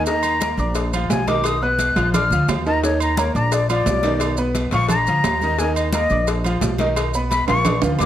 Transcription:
Already playing: D#2
0.06 D#3 D#4 D#5 A#5, cowbell, high conga, maracas
0.23 high conga, low agogo, maracas
0.41 A#3 A#4 A#5, cowbell, high conga, low timbale, low agogo, maracas
0.57 A#1 D4 D5 D6, high conga, maracas
0.75 cowbell, high conga, low agogo, maracas
0.93 F3 F4 F5, high conga, low agogo, maracas
1.10 B1 G#5, cowbell, high conga, low timbale, maracas
1.27 D#3 D#4 D#5 D6, cowbell, high conga, low agogo, maracas
1.44 D#6, cowbell, high conga, low agogo, maracas
1.62 B3 B4 B5 F#6, high conga
1.79 cowbell, high conga, low timbale, low agogo, maracas
1.96 A#1 F3 F4 F5, cowbell, high conga, low agogo, maracas
2.13 D4 D5 D6 F6, cowbell, high conga, low conga, low agogo, maracas
2.31 D2 F3 F4 F5, high conga, low conga, maracas
2.48 D#2, cowbell, high conga, low timbale, low agogo, maracas
2.66 D#3 D#4 D#5 A#5, maracas
2.83 D#3 D#4 C#5 D#5, cowbell, high conga, maracas
3.00 A#5, high conga, low agogo, maracas
3.17 A#3 A#4 C#5 A#5, cowbell, high conga, low timbale, low agogo, maracas
3.35 A#1 D4 D5 A#5 D6, high conga, maracas
3.52 D5, cowbell, high conga, low agogo, maracas
3.70 F3 F4 D5 F5, high conga, low agogo, maracas
3.86 B1, cowbell, high conga, low timbale, maracas
4.03 D#3 D#4 D5, cowbell, high conga, low agogo, maracas
4.20 cowbell, high conga, low agogo, maracas
4.37 B3 B4 B5, high conga, maracas
4.55 cowbell, high conga, low timbale, low agogo, maracas
4.71 A#1 F3 F4 F5 C#6, cowbell, high conga, low agogo, maracas
4.88 D4 D5 A#5 D6, cowbell, high conga, low conga, low agogo, maracas
5.06 D2 F3 F4 F5, high conga, maracas
5.24 D#2, cowbell, high conga, low timbale, low agogo, maracas
5.41 D#3 D#4 D#5, high conga, maracas
5.58 D#3 D#4 D#5 G#5, cowbell, high conga, maracas
5.75 D#5, high conga, low agogo, maracas
5.93 A#3 A#4 D#5 A#5, cowbell, high conga, low timbale, low agogo, maracas
6.10 A#1 D4 D5 D6, high conga, maracas
6.27 cowbell, high conga, low agogo, maracas
6.44 F3 F4 F5, high conga, low agogo, maracas
6.61 B1, cowbell, high conga, low timbale, maracas
6.78 D#3 D#4 D#5, cowbell, high conga, low agogo, maracas
6.96 cowbell, high conga, low agogo, maracas
7.14 B3 B4 B5, high conga, maracas
7.30 B5, cowbell, high conga, low timbale, low agogo, maracas
7.47 A#1 F3 F4 F5 C#6, cowbell, high conga, high timbale, low agogo, maracas
7.65 D4 D5 D6, cowbell, high conga, low conga, high timbale, low agogo, maracas
7.82 D2 F3 F4 F5, high conga, low conga, high timbale, maracas
7.99 D#2 A#2 A#3 D6, cowbell, high conga, low timbale, low agogo, maracas

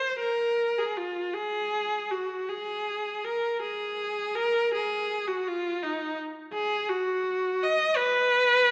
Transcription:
Already playing: C5
0.20 A#4
0.78 G#4
0.97 F4
1.34 G#4
2.11 F#4
2.49 G#4
3.24 A#4
3.62 G#4
4.35 A#4
4.75 G#4
5.27 F#4
5.47 F4
5.83 D#4
6.53 G#4
6.90 F#4
7.63 D#5
7.97 B4

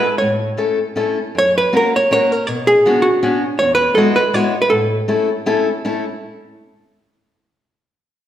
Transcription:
Already playing: B4
0.18 A2 C#5
0.57 A3 C#4 E4 A4
0.96 A3 C#4 E4 A4
1.35 F#2 C#5
1.58 B4
1.73 A#3 C#4 F#4 A#4
1.77 A#4
1.96 C#5
2.11 A#3 C#4 F#4 A#4 C#5
2.32 A#4
2.47 B2 C#5
2.67 G#4
2.86 B3 C#4 D4 F#4
3.02 F#4
3.23 B3 C#4 D4 F#4
3.59 E2 C#5
3.75 B4
3.95 G#3 B3 E4 F#4 A4
4.16 B4
4.33 G#3 B3 E4 F#4 C#5
4.62 B4
4.70 A2 A4
5.08 A3 C#4 E4 A4
5.46 A3 C#4 E4 A4
5.85 A3 C#4 E4 A4

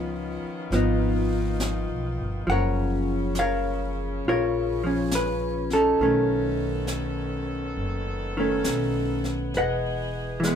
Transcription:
Already playing: C#2 D#3 F3 B3 C#4 D#4 F4 B4
0.44 muted upright bass stroke
0.71 G#1 F3 B3 D#4, brush sweep, snare
0.75 D#4
1.60 snare, hi-hat pedal
1.89 B1
2.18 G1
2.44 F#1 C#3 F3 C#4, brush sweep
2.50 C#4 A#4 C#5 F#5
3.35 snare, hi-hat pedal
3.39 A#4 C#5 F5
4.22 A#1, brush sweep
4.28 F4 A#4 C#5
4.84 F3 C#4
5.11 B4, snare, hi-hat pedal
5.70 C#4 A4, snare
5.75 D#4
5.97 B1 D#3 B3 A4, brush sweep
6.01 D#3 A3 C#4
6.87 snare, hi-hat pedal
7.75 F#1, brush sweep
8.37 D#3 A3 C#4
8.64 B1, snare, hi-hat pedal
9.24 snare
9.54 E1 E3 G#4 B4 D#5, brush sweep, snare
9.58 F#5
10.40 E3, snare, hi-hat pedal
10.44 G#3 B3

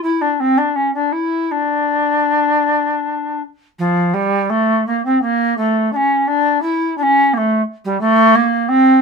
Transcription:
0.03 E4
0.21 D4
0.40 C4
0.57 D4
0.75 C#4
0.94 D4
1.12 E4
1.51 D4
3.78 F3
4.13 G3
4.49 A3
4.86 A#3
5.05 C4
5.21 A#3
5.57 A3
5.92 C#4 D4
6.27 D4
6.61 E4
6.97 D4
7.02 C#4
7.33 A3 A#3
7.84 G3
8.00 A3
8.35 A#3
8.68 C4

